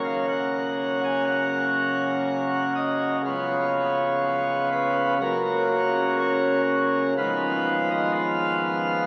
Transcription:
0.00 3.21 F#1 medium
0.00 3.21 F#2 medium
0.00 3.21 C#3 soft
0.00 3.21 A#3 soft
0.00 3.21 F#4 medium
0.04 0.25 F5 loud
0.28 1.01 F#5 loud
1.04 1.24 G#5 loud
1.28 2.72 F#5 loud
2.75 3.17 D#5 loud
3.25 5.18 C#1 medium
3.25 5.18 C#2 medium
3.25 5.18 C#3 medium
3.25 5.18 B3 medium
3.25 5.18 F4 medium
3.25 4.69 C#5 loud
4.72 5.14 B4 loud
5.21 7.14 F#1 medium
5.21 7.14 F#2 medium
5.21 7.14 C#3 medium
5.21 7.14 A#3 medium
5.21 7.14 F#4 medium
5.21 6.16 A#4 loud
6.20 6.61 C#5 loud
7.18 9.06 G#1 medium
7.18 9.06 G#2 medium
7.18 9.06 F3 medium
7.18 9.06 B3 medium
7.18 9.06 F4 medium
7.18 7.89 B4 loud
7.91 8.12 D#5 loud
8.15 9.06 F5 loud

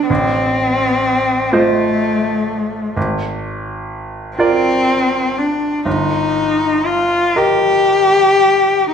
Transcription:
0.00 0.12 G4 soft
0.00 0.12 A#4 soft
0.00 0.12 D#5 soft
0.10 1.48 A1 soft
0.10 1.55 C4 medium
1.53 2.97 A3 medium
1.53 2.93 F4 soft
1.53 2.93 C5 soft
1.53 2.93 D#5 soft
2.97 4.36 G#1 soft
4.37 5.40 C4 medium
4.37 5.81 F4 soft
4.37 5.82 A#4 soft
4.37 5.82 D5 soft
5.38 5.87 D4 medium
5.85 7.31 G1 soft
5.85 6.88 D#4 medium
6.87 7.39 F4 medium
7.36 8.92 G4 medium
7.36 8.89 A#4 soft
7.36 8.89 D#5 soft

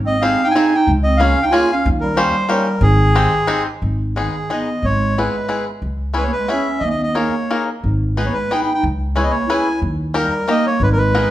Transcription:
0.00 0.33 G#1 medium
0.00 0.19 C4 medium
0.07 0.23 D#5 medium
0.19 0.44 C4 medium
0.19 0.40 C4 soft
0.19 0.40 D#4 soft
0.19 0.40 G4 soft
0.19 0.41 G#4 medium
0.19 0.48 F5 medium
0.44 0.54 D#4 medium
0.44 0.54 G5 medium
0.51 0.76 G#5 medium
0.55 0.73 C4 medium
0.55 0.75 D#4 medium
0.55 0.74 D#4 medium
0.55 0.73 G4 medium
0.55 0.74 G#4 medium
0.75 0.92 D#4 medium
0.75 0.92 G5 medium
0.87 1.30 C#2 medium
1.03 1.18 C4 medium
1.03 1.20 D#5 medium
1.17 1.38 A#3 medium
1.17 1.43 C#4 medium
1.17 1.38 C#4 medium
1.17 1.38 F4 soft
1.17 1.45 F5 medium
1.21 1.38 G#4 medium
1.43 1.50 D#4 medium
1.43 1.52 G5 medium
1.51 1.70 A#3 medium
1.51 1.70 C#4 medium
1.51 1.72 F4 medium
1.51 1.70 F4 medium
1.51 1.70 G#4 medium
1.51 1.74 G#5 medium
1.72 1.89 C#4 medium
1.72 1.89 F5 medium
1.86 2.27 D#2 medium
2.01 2.15 G3 medium
2.01 2.17 A#4 medium
2.16 2.47 G3 medium
2.16 2.35 A#3 medium
2.16 2.35 C#4 medium
2.16 2.35 D#4 medium
2.16 2.35 G4 medium
2.16 2.50 C5 medium
2.48 2.79 G3 medium
2.48 2.67 A#3 medium
2.48 2.67 C#4 medium
2.48 2.67 D#4 soft
2.48 2.67 G4 medium
2.48 2.83 A#4 medium
2.81 3.25 G#1 medium
2.81 3.62 D#3 medium
2.81 3.63 G#4 medium
3.15 3.33 G#3 soft
3.15 3.33 C4 medium
3.15 3.34 D#4 soft
3.15 3.33 G4 medium
3.47 3.66 G#3 medium
3.47 3.67 C4 medium
3.47 3.67 D#4 medium
3.47 3.67 G4 medium
3.82 4.26 G#1 medium
4.16 4.49 D#3 medium
4.16 4.35 G#3 soft
4.16 4.35 B3 soft
4.16 4.35 D#4 soft
4.16 4.52 G#4 medium
4.16 4.35 G#4 soft
4.50 4.68 G#3 soft
4.50 4.68 B3 soft
4.50 4.83 B3 medium
4.50 4.68 D#4 soft
4.50 4.68 G#4 soft
4.50 4.86 D#5 medium
4.83 5.26 G#1 medium
4.83 5.15 G#3 medium
4.83 5.18 C#5 medium
5.18 5.65 G#3 soft
5.18 5.35 G#3 soft
5.18 5.35 B3 soft
5.18 5.35 E4 soft
5.18 5.35 G#4 soft
5.18 5.65 B4 medium
5.49 5.67 G#3 soft
5.49 5.67 B3 soft
5.49 5.67 E4 soft
5.49 5.67 G#4 medium
5.82 6.25 C#2 medium
6.14 6.33 B3 soft
6.14 6.33 C#4 soft
6.14 6.33 E4 soft
6.14 6.33 G#4 medium
6.18 6.24 G#3 medium
6.18 6.24 B4 medium
6.23 6.31 A#3 soft
6.23 6.31 C#5 medium
6.32 6.49 B4 medium
6.38 6.51 G#3 medium
6.48 6.67 B3 soft
6.48 6.67 C#4 soft
6.48 6.82 C#4 medium
6.48 6.67 E4 soft
6.48 6.67 G#4 medium
6.48 6.84 E5 medium
6.80 7.26 D#2 medium
6.80 6.89 D#5 medium
6.84 6.92 A#3 medium
6.90 7.04 B3 medium
6.90 7.02 D#5 medium
7.03 7.15 B3 medium
7.03 7.16 D#5 medium
7.15 7.34 A#3 soft
7.15 7.65 A#3 soft
7.15 7.34 D#4 soft
7.15 7.34 G#4 soft
7.15 7.34 A#4 medium
7.15 7.64 C#5 medium
7.50 7.69 A#3 soft
7.50 7.69 D#4 soft
7.50 7.69 G#4 soft
7.50 7.69 A#4 medium
7.84 8.28 G#1 medium
8.17 8.25 G#3 soft
8.17 8.36 B3 soft
8.17 8.36 D#4 soft
8.17 8.36 G#4 soft
8.17 8.26 B4 medium
8.17 8.36 B4 soft
8.25 8.33 A#3 soft
8.25 8.34 C#5 soft
8.33 8.50 G#3 soft
8.33 8.52 B4 medium
8.51 8.69 B3 soft
8.51 8.69 D#4 soft
8.51 8.62 D#4 medium
8.51 8.69 G#4 soft
8.51 8.69 B4 medium
8.51 8.61 G5 medium
8.62 8.74 D#4 soft
8.62 8.73 G5 medium
8.74 8.85 D#4 medium
8.74 8.84 G5 medium
8.83 9.27 C#2 medium
9.16 9.23 G#3 medium
9.16 9.34 C#4 soft
9.16 9.34 E4 soft
9.16 9.34 G#4 soft
9.16 9.35 B4 medium
9.16 9.25 C#5 medium
9.23 9.30 B3 soft
9.23 9.32 D#5 medium
9.30 9.46 A#3 medium
9.30 9.50 C#5 medium
9.47 9.68 C#4 medium
9.47 9.79 E4 medium
9.47 9.68 E4 medium
9.47 9.67 G#4 soft
9.47 9.68 B4 medium
9.47 9.80 G#5 medium
9.82 10.25 D#2 medium
10.14 10.45 G3 medium
10.14 10.33 A#3 medium
10.14 10.32 D#4 soft
10.14 10.33 G4 medium
10.14 10.33 A#4 medium
10.14 10.50 A#4 medium
10.48 10.66 A#3 medium
10.48 10.64 A#3 medium
10.48 10.66 D#4 medium
10.48 10.66 G4 soft
10.48 10.66 A#4 medium
10.48 10.66 D#5 medium
10.66 10.80 A#3 medium
10.66 10.82 C#5 medium
10.80 11.24 G#1 medium
10.80 10.87 G#3 medium
10.80 10.89 B4 medium
10.88 10.96 G3 medium
10.93 10.98 A#4 medium
10.98 11.31 G#3 medium
10.98 11.31 B4 medium
11.15 11.31 B3 medium
11.15 11.31 D#4 soft
11.15 11.31 G#4 medium
11.15 11.31 A#4 medium

